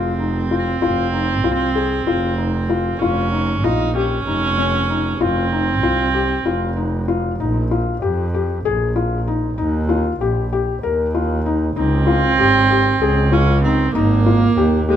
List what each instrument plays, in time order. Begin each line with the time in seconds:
Already playing: double bass F1, viola C4, felt piano F4
0.20 felt piano D#4
0.51 felt piano F4
0.82 double bass F1, felt piano F4
1.13 felt piano D#4
1.44 double bass C2, felt piano F4
1.76 felt piano G#4
2.07 double bass F1, felt piano F4
2.38 felt piano D#4
2.69 felt piano F4
2.99 double bass F1, viola C#4, felt piano F4
3.33 felt piano D#4
3.63 double bass A#1, viola D#4, felt piano F4
3.95 viola C#4, felt piano G4
4.26 double bass F1, felt piano D#4
4.58 felt piano C#4
4.90 felt piano D#4
5.20 double bass F1, viola C4, felt piano F4
5.52 felt piano D#4
5.83 double bass C2, felt piano F4
6.14 felt piano G4
6.45 double bass F1, felt piano F4
6.77 felt piano D#4
7.08 felt piano F4
7.39 double bass A#1, felt piano D#4
7.71 felt piano F4
8.02 double bass F2, felt piano G4
8.34 felt piano G4
8.65 double bass A#1, felt piano G#4
8.96 felt piano F4
9.27 felt piano D#4
9.58 double bass D#2, felt piano D#4
9.89 felt piano F4
10.20 double bass A#1, felt piano G4
10.53 felt piano G4
10.83 double bass D#2, felt piano A#4
11.14 felt piano F4
11.46 felt piano D#4
11.76 double bass C#2, viola C4, felt piano D#4
12.07 felt piano F4
12.38 double bass G#1, felt piano G4
12.71 felt piano G4
13.01 double bass C#2, felt piano G#4
13.32 viola C#4, felt piano F4
13.63 viola C4, felt piano D#4
13.94 double bass G#1, viola A#3, felt piano D#4
14.26 felt piano F4
14.56 double bass D#2, felt piano G4
14.89 viola G#3, felt piano G4